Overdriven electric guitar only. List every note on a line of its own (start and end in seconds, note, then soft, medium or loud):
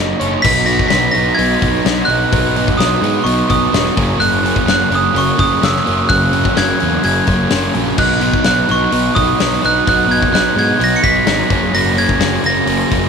0.00 0.42 F#3 medium
0.00 0.43 A#3 medium
0.00 0.44 D#4 medium
0.00 0.43 A#4 medium
0.20 0.43 C#5 medium
0.43 0.66 B2 loud
0.43 0.66 F#3 loud
0.43 0.66 B3 medium
0.43 0.67 D#4 loud
0.66 0.89 B2 medium
0.66 0.90 F#3 medium
0.66 0.90 B3 medium
0.66 0.91 D#4 loud
0.90 1.13 B2 loud
0.90 1.14 F#3 loud
0.90 1.13 B3 loud
0.90 1.14 D#4 loud
1.14 1.36 B2 medium
1.14 1.37 F#3 medium
1.14 1.37 B3 medium
1.14 1.37 D#4 medium
1.37 1.60 B2 medium
1.37 1.61 F#3 loud
1.37 1.61 B3 loud
1.37 1.61 D#4 loud
1.61 1.84 B2 medium
1.61 1.85 F#3 medium
1.61 1.84 B3 loud
1.61 1.85 D#4 loud
1.85 2.07 B2 medium
1.85 2.08 F#3 medium
1.85 2.08 B3 loud
1.85 2.08 D#4 loud
2.08 2.30 B2 medium
2.08 2.32 F#3 medium
2.08 2.32 B3 medium
2.08 2.32 D#4 loud
2.32 2.55 B2 medium
2.32 2.56 F#3 loud
2.32 2.56 B3 loud
2.32 2.56 D#4 loud
2.56 2.77 B2 medium
2.56 2.78 F#3 loud
2.56 2.78 B3 loud
2.56 2.78 D#4 loud
2.78 3.01 B2 loud
2.78 3.02 F#3 loud
2.78 3.02 B3 loud
2.78 3.03 D#4 loud
3.02 3.24 B2 medium
3.02 3.26 F#3 medium
3.02 3.25 B3 loud
3.02 3.26 D#4 loud
3.25 3.48 B2 medium
3.25 3.49 F#3 loud
3.25 3.49 B3 medium
3.25 3.49 D#4 loud
3.49 3.70 B2 medium
3.49 3.72 F#3 medium
3.49 3.71 B3 loud
3.49 3.72 D#4 loud
3.72 3.95 B2 medium
3.72 3.96 F#3 loud
3.72 3.95 B3 loud
3.72 3.95 D#4 loud
3.96 4.19 F#2 medium
3.96 4.19 C#3 loud
3.96 4.20 F#3 loud
3.96 4.21 A#3 loud
3.96 4.21 C#4 loud
4.19 4.43 F#2 loud
4.19 4.43 C#3 loud
4.19 4.44 F#3 loud
4.19 4.45 A#3 loud
4.19 4.45 C#4 loud
4.43 4.66 F#2 medium
4.43 4.66 C#3 medium
4.43 4.67 F#3 medium
4.43 4.67 A#3 loud
4.43 4.68 C#4 loud
4.67 4.89 F#2 loud
4.67 4.90 C#3 loud
4.67 4.91 F#3 loud
4.67 4.92 A#3 loud
4.67 4.92 C#4 loud
4.90 5.12 F#2 medium
4.90 5.13 C#3 medium
4.90 5.14 F#3 medium
4.90 5.13 A#3 medium
4.90 5.14 C#4 medium
5.13 5.36 F#2 loud
5.13 5.37 C#3 loud
5.13 5.38 F#3 loud
5.13 5.38 A#3 loud
5.13 5.38 C#4 loud
5.37 5.60 F#2 loud
5.37 5.61 C#3 medium
5.37 5.62 F#3 medium
5.37 5.62 A#3 loud
5.37 5.63 C#4 medium
5.62 5.83 F#2 loud
5.62 5.84 C#3 loud
5.62 5.85 F#3 medium
5.62 5.84 A#3 loud
5.62 5.85 C#4 loud
5.84 6.07 F#2 medium
5.84 6.08 C#3 medium
5.84 6.09 F#3 loud
5.84 6.09 A#3 loud
5.84 6.09 C#4 loud
6.08 6.30 F#2 loud
6.08 6.31 C#3 loud
6.08 6.32 F#3 loud
6.08 6.32 A#3 loud
6.08 6.33 C#4 loud
6.32 6.54 F#2 medium
6.32 6.55 C#3 medium
6.32 6.56 F#3 medium
6.32 6.56 A#3 medium
6.32 6.56 C#4 loud
6.56 6.77 F#2 loud
6.56 6.78 C#3 medium
6.56 6.79 F#3 loud
6.56 6.79 A#3 loud
6.56 6.80 C#4 loud
6.79 7.01 F#2 medium
6.79 7.02 C#3 medium
6.79 7.03 F#3 medium
6.79 7.03 A#3 loud
6.79 7.04 C#4 medium
7.02 7.25 F#2 medium
7.02 7.25 C#3 medium
7.02 7.27 F#3 loud
7.02 7.27 A#3 medium
7.02 7.27 C#4 loud
7.26 7.49 F#2 medium
7.26 7.49 C#3 medium
7.26 7.51 F#3 medium
7.26 7.50 A#3 medium
7.26 7.51 C#4 medium
7.50 7.74 F#2 loud
7.50 7.74 C#3 medium
7.50 7.76 F#3 medium
7.50 7.76 A#3 loud
7.50 7.76 C#4 loud
7.75 7.97 F#2 medium
7.75 7.97 C#3 medium
7.75 7.98 F#3 medium
7.75 7.97 A#3 medium
7.75 7.97 C#4 medium
7.98 8.20 B2 medium
7.98 8.21 F#3 loud
7.98 8.22 B3 loud
7.98 8.22 D#4 loud
8.21 8.44 B2 medium
8.21 8.45 F#3 loud
8.21 8.44 B3 loud
8.21 8.45 D#4 medium
8.44 8.68 B2 medium
8.44 8.69 F#3 loud
8.44 8.69 B3 loud
8.44 8.69 D#4 loud
8.69 8.90 B2 medium
8.69 8.91 F#3 medium
8.69 8.91 B3 medium
8.69 8.92 D#4 loud
8.91 9.13 B2 medium
8.91 9.14 F#3 loud
8.91 9.14 B3 loud
8.91 9.14 D#4 loud
9.14 9.38 B2 medium
9.14 9.39 F#3 medium
9.14 9.39 B3 loud
9.14 9.39 D#4 loud
9.39 9.61 B2 medium
9.39 9.62 F#3 loud
9.39 9.62 B3 loud
9.39 9.63 D#4 loud
9.62 9.84 B2 medium
9.62 9.86 F#3 medium
9.62 9.85 B3 loud
9.62 9.86 D#4 medium
9.86 10.06 B2 medium
9.86 10.07 F#3 loud
9.86 10.07 B3 medium
9.86 10.08 D#4 loud
10.07 10.30 B2 medium
10.07 10.32 F#3 medium
10.07 10.32 B3 medium
10.07 10.32 D#4 medium
10.31 10.54 B2 medium
10.31 10.55 F#3 medium
10.31 10.56 B3 loud
10.31 10.56 D#4 loud
10.56 10.77 B2 medium
10.56 10.79 F#3 medium
10.56 10.79 B3 medium
10.56 10.79 D#4 medium
10.78 11.01 B2 loud
10.78 11.03 F#3 medium
10.78 11.03 B3 loud
10.78 11.03 D#4 loud
11.03 11.26 B2 loud
11.03 11.27 F#3 loud
11.03 11.26 B3 medium
11.03 11.27 D#4 loud
11.27 11.49 B2 medium
11.27 11.50 F#3 loud
11.27 11.49 B3 loud
11.27 11.50 D#4 loud
11.50 11.73 F#2 loud
11.50 11.73 C#3 loud
11.50 11.74 F#3 loud
11.50 11.74 A#3 loud
11.50 11.74 C#4 loud
11.74 11.95 F#2 medium
11.74 11.96 C#3 loud
11.74 11.98 F#3 loud
11.74 11.97 A#3 loud
11.74 11.98 C#4 loud
11.96 12.20 F#2 medium
11.96 12.20 C#3 loud
11.96 12.22 F#3 medium
11.96 12.21 A#3 loud
11.96 12.21 C#4 loud
12.21 12.42 F#2 loud
12.21 12.43 C#3 medium
12.21 12.45 F#3 loud
12.21 12.44 A#3 loud
12.21 12.45 C#4 loud
12.44 12.66 F#2 medium
12.44 12.67 C#3 medium
12.44 12.68 F#3 medium
12.44 12.68 A#3 medium
12.44 12.68 C#4 medium
12.68 12.90 F#2 medium
12.68 12.91 C#3 loud
12.68 12.92 F#3 loud
12.68 12.91 A#3 loud
12.68 12.92 C#4 loud
12.91 13.09 F#2 medium
12.91 13.09 C#3 medium
12.91 13.09 F#3 loud
12.91 13.09 A#3 loud
12.91 13.09 C#4 loud